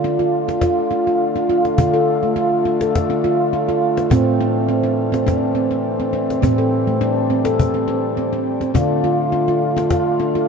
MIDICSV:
0, 0, Header, 1, 4, 480
1, 0, Start_track
1, 0, Key_signature, -1, "minor"
1, 0, Tempo, 580271
1, 1473, Time_signature, 4, 2, 24, 8
1, 8670, End_track
2, 0, Start_track
2, 0, Title_t, "Handpan"
2, 0, Program_c, 0, 114
2, 0, Note_on_c, 0, 50, 79
2, 35, Note_on_c, 0, 62, 80
2, 159, Note_on_c, 0, 65, 61
2, 160, Note_off_c, 0, 62, 0
2, 399, Note_off_c, 0, 65, 0
2, 400, Note_on_c, 0, 62, 70
2, 512, Note_on_c, 0, 65, 81
2, 513, Note_off_c, 0, 62, 0
2, 750, Note_on_c, 0, 62, 72
2, 753, Note_off_c, 0, 65, 0
2, 878, Note_off_c, 0, 62, 0
2, 886, Note_on_c, 0, 65, 61
2, 1122, Note_on_c, 0, 62, 74
2, 1123, Note_off_c, 0, 65, 0
2, 1234, Note_off_c, 0, 62, 0
2, 1236, Note_on_c, 0, 65, 72
2, 1441, Note_off_c, 0, 50, 0
2, 1473, Note_on_c, 0, 50, 76
2, 1475, Note_off_c, 0, 65, 0
2, 1476, Note_on_c, 0, 62, 84
2, 1601, Note_off_c, 0, 62, 0
2, 1601, Note_on_c, 0, 69, 70
2, 1841, Note_off_c, 0, 69, 0
2, 1843, Note_on_c, 0, 57, 68
2, 1953, Note_on_c, 0, 65, 83
2, 1955, Note_off_c, 0, 57, 0
2, 2194, Note_off_c, 0, 65, 0
2, 2195, Note_on_c, 0, 62, 76
2, 2321, Note_off_c, 0, 62, 0
2, 2322, Note_on_c, 0, 69, 63
2, 2562, Note_off_c, 0, 69, 0
2, 2563, Note_on_c, 0, 62, 73
2, 2676, Note_off_c, 0, 62, 0
2, 2681, Note_on_c, 0, 65, 76
2, 2918, Note_off_c, 0, 65, 0
2, 2921, Note_on_c, 0, 62, 77
2, 3045, Note_off_c, 0, 62, 0
2, 3049, Note_on_c, 0, 65, 75
2, 3285, Note_on_c, 0, 62, 64
2, 3286, Note_off_c, 0, 65, 0
2, 3362, Note_off_c, 0, 50, 0
2, 3392, Note_on_c, 0, 45, 85
2, 3397, Note_off_c, 0, 62, 0
2, 3403, Note_on_c, 0, 60, 94
2, 3640, Note_off_c, 0, 60, 0
2, 3645, Note_on_c, 0, 62, 77
2, 3876, Note_on_c, 0, 60, 78
2, 3880, Note_off_c, 0, 62, 0
2, 4000, Note_on_c, 0, 62, 69
2, 4002, Note_off_c, 0, 60, 0
2, 4237, Note_on_c, 0, 60, 76
2, 4241, Note_off_c, 0, 62, 0
2, 4353, Note_off_c, 0, 60, 0
2, 4356, Note_on_c, 0, 62, 85
2, 4590, Note_on_c, 0, 60, 74
2, 4596, Note_off_c, 0, 62, 0
2, 4720, Note_off_c, 0, 60, 0
2, 4721, Note_on_c, 0, 62, 63
2, 4961, Note_on_c, 0, 60, 72
2, 4962, Note_off_c, 0, 62, 0
2, 5072, Note_on_c, 0, 62, 71
2, 5075, Note_off_c, 0, 60, 0
2, 5282, Note_off_c, 0, 45, 0
2, 5314, Note_off_c, 0, 62, 0
2, 5314, Note_on_c, 0, 60, 92
2, 5320, Note_on_c, 0, 45, 75
2, 5442, Note_off_c, 0, 60, 0
2, 5445, Note_on_c, 0, 69, 63
2, 5684, Note_off_c, 0, 69, 0
2, 5686, Note_on_c, 0, 57, 71
2, 5798, Note_off_c, 0, 57, 0
2, 5799, Note_on_c, 0, 62, 90
2, 6038, Note_off_c, 0, 62, 0
2, 6039, Note_on_c, 0, 60, 72
2, 6161, Note_on_c, 0, 69, 73
2, 6164, Note_off_c, 0, 60, 0
2, 6402, Note_off_c, 0, 69, 0
2, 6403, Note_on_c, 0, 60, 72
2, 6516, Note_off_c, 0, 60, 0
2, 6516, Note_on_c, 0, 62, 74
2, 6756, Note_off_c, 0, 62, 0
2, 6760, Note_on_c, 0, 60, 76
2, 6884, Note_off_c, 0, 60, 0
2, 6888, Note_on_c, 0, 62, 70
2, 7120, Note_on_c, 0, 60, 64
2, 7125, Note_off_c, 0, 62, 0
2, 7204, Note_off_c, 0, 45, 0
2, 7232, Note_on_c, 0, 50, 74
2, 7234, Note_off_c, 0, 60, 0
2, 7236, Note_on_c, 0, 62, 90
2, 7475, Note_off_c, 0, 62, 0
2, 7477, Note_on_c, 0, 65, 75
2, 7712, Note_on_c, 0, 62, 76
2, 7716, Note_off_c, 0, 65, 0
2, 7840, Note_off_c, 0, 62, 0
2, 7841, Note_on_c, 0, 65, 65
2, 8078, Note_on_c, 0, 62, 77
2, 8080, Note_off_c, 0, 65, 0
2, 8192, Note_off_c, 0, 62, 0
2, 8193, Note_on_c, 0, 65, 78
2, 8433, Note_off_c, 0, 65, 0
2, 8434, Note_on_c, 0, 62, 76
2, 8560, Note_off_c, 0, 62, 0
2, 8563, Note_on_c, 0, 65, 65
2, 8670, Note_off_c, 0, 50, 0
2, 8670, Note_off_c, 0, 65, 0
2, 8670, End_track
3, 0, Start_track
3, 0, Title_t, "French horn section"
3, 0, Program_c, 1, 60
3, 0, Note_on_c, 1, 50, 80
3, 0, Note_on_c, 1, 57, 78
3, 0, Note_on_c, 1, 65, 82
3, 3363, Note_off_c, 1, 65, 0
3, 3365, Note_off_c, 1, 50, 0
3, 3397, Note_on_c, 1, 60, 88
3, 3398, Note_on_c, 1, 52, 78
3, 5283, Note_off_c, 1, 57, 0
3, 5318, Note_on_c, 1, 55, 66
3, 7203, Note_off_c, 1, 52, 0
3, 7203, Note_off_c, 1, 60, 0
3, 7217, Note_off_c, 1, 55, 0
3, 7234, Note_on_c, 1, 65, 89
3, 7237, Note_on_c, 1, 57, 77
3, 7238, Note_on_c, 1, 50, 70
3, 8670, Note_off_c, 1, 50, 0
3, 8670, Note_off_c, 1, 57, 0
3, 8670, Note_off_c, 1, 65, 0
3, 8670, End_track
4, 0, Start_track
4, 0, Title_t, "Cajon"
4, 169, Note_on_c, 9, 38, 17
4, 251, Note_off_c, 9, 38, 0
4, 402, Note_on_c, 9, 38, 40
4, 485, Note_off_c, 9, 38, 0
4, 508, Note_on_c, 9, 36, 54
4, 508, Note_on_c, 9, 38, 18
4, 591, Note_off_c, 9, 36, 0
4, 591, Note_off_c, 9, 38, 0
4, 649, Note_on_c, 9, 38, 17
4, 731, Note_off_c, 9, 38, 0
4, 1364, Note_on_c, 9, 38, 40
4, 1447, Note_off_c, 9, 38, 0
4, 1473, Note_on_c, 9, 36, 55
4, 1556, Note_off_c, 9, 36, 0
4, 2080, Note_on_c, 9, 38, 17
4, 2163, Note_off_c, 9, 38, 0
4, 2323, Note_on_c, 9, 38, 45
4, 2406, Note_off_c, 9, 38, 0
4, 2444, Note_on_c, 9, 36, 57
4, 2444, Note_on_c, 9, 38, 20
4, 2527, Note_off_c, 9, 36, 0
4, 2527, Note_off_c, 9, 38, 0
4, 2565, Note_on_c, 9, 38, 16
4, 2647, Note_off_c, 9, 38, 0
4, 3288, Note_on_c, 9, 38, 40
4, 3370, Note_off_c, 9, 38, 0
4, 3400, Note_on_c, 9, 36, 64
4, 3483, Note_off_c, 9, 36, 0
4, 4009, Note_on_c, 9, 38, 19
4, 4092, Note_off_c, 9, 38, 0
4, 4249, Note_on_c, 9, 38, 45
4, 4332, Note_off_c, 9, 38, 0
4, 4366, Note_on_c, 9, 36, 58
4, 4366, Note_on_c, 9, 38, 19
4, 4449, Note_off_c, 9, 36, 0
4, 4449, Note_off_c, 9, 38, 0
4, 4488, Note_on_c, 9, 38, 17
4, 4571, Note_off_c, 9, 38, 0
4, 5214, Note_on_c, 9, 38, 39
4, 5296, Note_off_c, 9, 38, 0
4, 5320, Note_on_c, 9, 36, 51
4, 5403, Note_off_c, 9, 36, 0
4, 5566, Note_on_c, 9, 38, 19
4, 5649, Note_off_c, 9, 38, 0
4, 5926, Note_on_c, 9, 38, 17
4, 6008, Note_off_c, 9, 38, 0
4, 6162, Note_on_c, 9, 38, 49
4, 6245, Note_off_c, 9, 38, 0
4, 6282, Note_on_c, 9, 36, 57
4, 6365, Note_off_c, 9, 36, 0
4, 6766, Note_on_c, 9, 38, 17
4, 6849, Note_off_c, 9, 38, 0
4, 7123, Note_on_c, 9, 38, 35
4, 7205, Note_off_c, 9, 38, 0
4, 7237, Note_on_c, 9, 36, 55
4, 7320, Note_off_c, 9, 36, 0
4, 7847, Note_on_c, 9, 38, 18
4, 7930, Note_off_c, 9, 38, 0
4, 8087, Note_on_c, 9, 38, 47
4, 8170, Note_off_c, 9, 38, 0
4, 8193, Note_on_c, 9, 36, 60
4, 8193, Note_on_c, 9, 38, 18
4, 8276, Note_off_c, 9, 36, 0
4, 8276, Note_off_c, 9, 38, 0
4, 8318, Note_on_c, 9, 38, 18
4, 8401, Note_off_c, 9, 38, 0
4, 8670, End_track
0, 0, End_of_file